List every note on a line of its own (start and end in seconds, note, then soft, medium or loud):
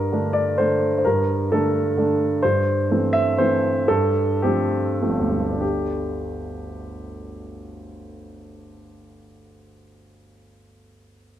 0.00 1.06 G2 soft
0.00 0.34 A#4 medium
0.12 0.54 D3 soft
0.12 0.55 A3 soft
0.12 0.55 D4 soft
0.33 0.57 D5 medium
0.58 1.01 D3 soft
0.58 1.01 A3 soft
0.58 1.01 D4 soft
0.58 0.97 C5 medium
0.98 1.05 C5 soft
1.05 1.51 G2 soft
1.05 1.51 A#4 medium
1.52 1.94 D3 soft
1.52 1.94 A3 soft
1.52 1.94 D4 soft
1.52 2.20 A4 medium
1.97 2.39 D3 soft
1.97 2.40 A3 soft
1.97 2.40 D4 soft
2.43 2.89 G2 soft
2.43 3.13 C5 medium
2.90 3.35 E3 soft
2.90 3.35 A3 soft
2.90 3.35 C4 soft
3.13 3.38 E5 medium
3.38 3.85 E3 soft
3.38 3.85 A3 soft
3.38 3.85 C4 soft
3.38 3.89 C5 medium
3.88 4.42 G2 medium
3.88 4.42 A4 medium
4.42 4.97 F3 soft
4.42 4.97 A3 soft
4.42 4.97 C4 soft
4.42 5.31 G4 medium
5.02 5.59 F3 soft
5.02 5.40 A3 soft
5.02 5.59 C4 soft
5.09 9.18 G1 soft
5.19 9.29 D2 soft
5.30 9.39 G3 soft
5.41 9.51 A3 soft
5.52 9.61 D4 soft
5.61 9.70 G4 soft